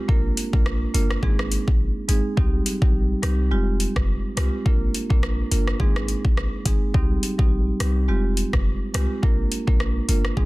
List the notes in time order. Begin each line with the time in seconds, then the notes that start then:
0.08 A#1 A#3 D4 F4 A#4, kick
0.37 closed hi-hat
0.53 A#1 A#3 D4 F4 A#4, kick
0.66 cross-stick
0.94 G1 A#3 D4 F4 A#4, closed hi-hat
1.11 cross-stick
1.23 G#1 G#3 C4 D#4 G#4, kick
1.39 cross-stick
1.52 closed hi-hat
1.68 A#1, kick
2.08 G#1 G#3 C4 D#4 G#4, closed hi-hat
2.37 C2 G3 C4 D#4 G4, kick
2.66 closed hi-hat
2.82 A#1 G3 C4 D#4 G4, kick
3.23 C2 G3 C4 D#4 G4, cross-stick, closed hi-hat
3.51 F1 G#3 C4 F4 G4
3.80 closed hi-hat
3.96 F1, kick, cross-stick
4.37 C2 G#3 C4 F4 G4, cross-stick, closed hi-hat
4.65 A#1 A#3 D4 F4 A#4, kick
4.95 closed hi-hat
5.10 A#1 A#3 D4 F4 A#4, kick
5.23 cross-stick
5.51 G1 A#3 D4 F4 A#4, closed hi-hat
5.68 cross-stick
5.80 G#1 G#3 C4 D#4 G#4, kick
5.96 cross-stick
6.08 closed hi-hat
6.25 A#1, kick
6.37 cross-stick
6.66 G#1 G#3 C4 D#4 G#4, kick, closed hi-hat
6.94 C2 G3 C4 D#4 G4, kick
7.23 closed hi-hat
7.39 A#1 G3 C4 D#4 G4, kick
7.80 C2 G3 C4 D#4 G4, cross-stick, closed hi-hat
8.08 F1 G#3 C4 F4 G4
8.37 closed hi-hat
8.53 F1, kick, cross-stick
8.94 C2 G#3 C4 F4 G4, cross-stick, closed hi-hat
9.23 A#1 A#3 D4 F4 A#4, kick
9.52 closed hi-hat
9.67 A#1 A#3 D4 F4 A#4, kick
9.80 cross-stick
10.09 G1 A#3 D4 F4 A#4, closed hi-hat
10.25 cross-stick
10.37 G#1 G#3 C4 D#4 G#4, kick